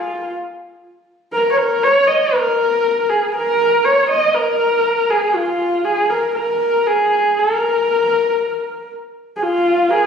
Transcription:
Already playing: F4
1.33 A#4
1.51 C#5
1.57 A#4
1.83 C#5
2.07 D#5
2.33 A#4
3.09 G#4
3.34 A#4
3.84 C#5
4.10 D#5
4.34 A#4
5.10 G#4
5.34 F4
5.85 G#4
6.10 A#4
6.35 A#4
6.87 G#4
7.39 A#4
9.36 G#4
9.42 F4
9.89 G#4 A#4

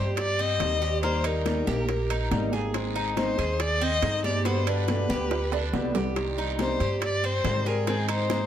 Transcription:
Already playing: G2 G3 C4 G4 C5
0.17 D5, muted steel-string acoustic guitar stroke, high bongo, high conga, high timbale, long guiro
0.39 C4 D#5, high conga
0.60 D#2 C3 D#3 G3 C4 G4, high bongo, low bongo, high conga, high timbale, low timbale, short guiro
0.81 G3 C4 G4, high bongo, short guiro
1.02 D#3 G3 A#3 D#4 G4 C5, high bongo, high conga, high timbale, long guiro
1.24 D#4 A#4, high bongo, high conga, high timbale
1.45 D#3 G3 A#3 D#4 G4, high bongo, high conga, high timbale, low timbale, short guiro
1.67 A#1 A#3 D#4 G4, high bongo, high conga, short guiro
1.88 muted steel-string acoustic guitar stroke, high bongo, high conga, high timbale, long guiro
2.10 D#4, high conga, high timbale
2.31 G#1 D#3 G3 A#3 D#4 G4, high bongo, low bongo, high conga, high timbale, low timbale, short guiro
2.52 A#3 D#4 G4 G#4, high bongo, high conga, short guiro
2.74 D#3 G#3 C4 D#4 G#4, high bongo, high conga, high timbale, long guiro
2.96 D#4, high bongo
3.16 D#3 G#3 C4 D#4 G#4 C5, high bongo, high conga, high timbale, low timbale, short guiro
3.38 D#2 C4 D#4 G#4, high bongo, high timbale, short guiro
3.59 D5, muted steel-string acoustic guitar stroke, high bongo, high conga, high timbale, long guiro
3.81 C4 D#5, high conga
4.02 G2 D#3 G#3 C4 D#4 G#4, high bongo, low bongo, high conga, high timbale, low timbale, short guiro
4.24 C4 D#4 G4 G#4 D5, high bongo, high conga, short guiro
4.45 B2 D3 G3 B3 G4 C5, high bongo, high conga, high timbale, long guiro
4.67 D4 B4, high bongo, high conga, high timbale
4.87 B2 D3 G3 B3 G4, high bongo, high conga, high timbale, low timbale, short guiro
5.09 D2 G3 B3 G4, high bongo, high conga, short guiro
5.30 muted steel-string acoustic guitar stroke, high bongo, high conga, high timbale, long guiro
5.52 D4, high conga, low timbale
5.72 C2 B2 D3 G3 B3 G4, high bongo, low bongo, high conga, low timbale, short guiro
5.94 G3 B3 G4, high bongo, low conga, low timbale, short guiro
6.15 C3 D#3 G3 C4 G4, high bongo, high conga, high timbale, long guiro
6.38 D#4, high bongo, high conga
6.59 C3 D#3 G3 C4 G4 C5, high bongo, high conga, high timbale, low timbale, short guiro
6.80 G2 G3 C4 G4, high bongo, high conga, high timbale, short guiro
7.02 D5, muted steel-string acoustic guitar stroke, high bongo, high conga, high timbale, long guiro
7.23 C4 C5, high conga
7.44 G#2 C3 D#3 G3 C4 G4, high bongo, low bongo, high conga, high timbale, low timbale, short guiro
7.66 G3 C4 G4 G#4 A#4, high bongo, short guiro
7.87 D#3 G#3 C4 D#4 G#4, high bongo, high conga, high timbale, long guiro
8.08 D#4 C5, high bongo, high conga, high timbale
8.29 D#3 G#3 C4 D#4 G#4, high bongo, high conga, high timbale, low timbale, short guiro

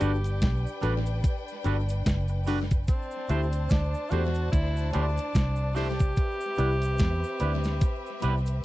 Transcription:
Already playing: D4 G4 B4 G5
0.00 G1 G3 D4 F#4 A4 B4, closed hi-hat, cabasa
0.24 closed hi-hat, cabasa
0.41 B1, kick, snare, closed hi-hat, cabasa
0.67 cabasa
0.81 A1 G3 D4 F#4 A4 B4, closed hi-hat, cabasa
1.06 A4 B4, closed hi-hat, cabasa
1.24 kick, closed hi-hat, cabasa
1.48 cabasa
1.64 G1 G3 D4 F#4 A4 B4, closed hi-hat, cabasa
1.89 closed hi-hat, cabasa
2.06 F#1, kick, snare, closed hi-hat, cabasa
2.28 muted clean electric guitar stroke, cabasa
2.46 G3 D4 F#4 A4 B4, open hi-hat, cabasa
2.71 kick, closed hi-hat, cabasa
2.87 C4 D4 C5 A5, kick, closed hi-hat, cabasa
3.11 cabasa
3.29 D2 A3 D4 E4 G4 A4 C5, closed hi-hat, cabasa
3.52 closed hi-hat, cabasa
3.69 D2 D4, kick, snare, closed hi-hat, cabasa
3.94 cabasa
4.10 E2 A3 D4 E4 F#4 G4 A4 C5, closed hi-hat, cabasa
4.34 closed hi-hat, cabasa
4.52 D2 E4, kick, closed hi-hat, cabasa
4.77 cabasa
4.93 D2 A3 D4 E4 G4 A4 C5, closed hi-hat, cabasa
5.17 closed hi-hat, cabasa
5.35 C2, kick, snare, closed hi-hat, cabasa
5.56 cabasa
5.75 A3 D4 E4 G4 A4 C5, open hi-hat, cabasa
5.99 kick, closed hi-hat, cabasa
6.16 C4 B4 E5, kick, closed hi-hat, cabasa
6.41 cabasa
6.58 C2 B3 E4 G4 B4 D5, closed hi-hat, cabasa
6.82 closed hi-hat, cabasa
6.98 E2, kick, snare, closed hi-hat, cabasa
7.24 cabasa
7.40 D2 B3 E4 G4 B4 D5, closed hi-hat, cabasa
7.64 B4 D5, snare, closed hi-hat, cabasa
7.81 kick, closed hi-hat, cabasa
8.06 cabasa
8.22 C2 B3 E4 G4 B4 D5, closed hi-hat, cabasa
8.46 closed hi-hat, cabasa

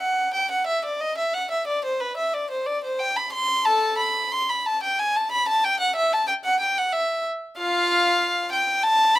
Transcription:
0.00 F#5
0.34 G5
0.51 F#5
0.67 E5
0.85 D5
1.00 D#5
1.17 E5
1.33 F#5
1.51 E5
1.67 D5
1.85 C5
2.00 B4
2.17 E5
2.33 D5
2.50 C5
2.66 D5
2.84 C5
2.99 G5
3.16 B5
3.32 C6
3.65 A4 A5
3.98 B5
4.32 C6
4.49 B5
4.66 A5
4.83 G5
4.99 G#5
5.16 A5
5.31 B5
5.48 A5
5.64 G5
5.80 F#5
5.96 E5
6.13 A5
6.27 G5
6.44 F#5
6.60 G5
6.78 F#5
6.93 E5
7.57 F4 F5
8.52 G5
8.83 A5
9.15 B5

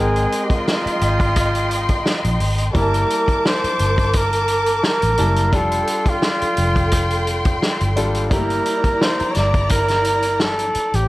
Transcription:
Already playing: G#1 G#3 C4 A#4 D#5 G5 C6
0.00 G#4
0.16 closed hi-hat
0.32 closed hi-hat
0.45 G4
0.50 kick, closed hi-hat
0.54 F4
0.68 snare
0.86 muted fingered electric bass stroke, closed hi-hat
1.01 G#1, closed hi-hat
1.20 kick, closed hi-hat
1.36 kick, closed hi-hat
1.55 closed hi-hat
1.71 closed hi-hat
1.89 kick, closed hi-hat
2.06 snare
2.24 A#1, closed hi-hat
2.40 G#1, open hi-hat
2.58 closed hi-hat
2.73 G1 G3 A#3 E4 G4 A#4 A5 D6, kick, closed hi-hat
2.82 A5
2.94 closed hi-hat
3.10 closed hi-hat
3.28 kick, closed hi-hat
3.45 C5, snare
3.64 muted fingered electric bass stroke, closed hi-hat
3.79 G1, closed hi-hat
3.98 kick, closed hi-hat
4.13 A#4, kick, closed hi-hat
4.33 closed hi-hat
4.48 closed hi-hat
4.66 closed hi-hat
4.83 A#4, snare
5.02 A1, closed hi-hat
5.17 F#1 G3 A#3 E4 A5, closed hi-hat
5.36 closed hi-hat
5.52 F1 G3 D4 F4 A4 G5 C6, kick, closed hi-hat
5.72 closed hi-hat
5.87 closed hi-hat
6.06 F4, kick, closed hi-hat
6.22 snare
6.42 muted fingered electric bass stroke, closed hi-hat
6.57 F1, closed hi-hat
6.76 kick, closed hi-hat
6.91 kick, closed hi-hat
7.10 closed hi-hat
7.27 closed hi-hat
7.45 kick, closed hi-hat
7.62 snare
7.80 G1, closed hi-hat
7.96 G#1 G3 D4 F4 A4, closed hi-hat
8.14 closed hi-hat
8.30 G1 G3 A3 E4 G4 A#4 D5 A#5, kick, closed hi-hat
8.37 A#3
8.50 closed hi-hat
8.66 closed hi-hat
8.84 kick, closed hi-hat
9.01 C5, snare
9.20 muted fingered electric bass stroke, closed hi-hat
9.31 C#5, closed hi-hat
9.36 G1 D5, snare
9.54 kick, closed hi-hat
9.69 A#4, kick, closed hi-hat
9.88 snare, closed hi-hat
10.04 closed hi-hat
10.22 closed hi-hat
10.40 A4, snare
10.59 closed hi-hat
10.75 muted fingered electric bass stroke, closed hi-hat
10.94 A1 G4, closed hi-hat

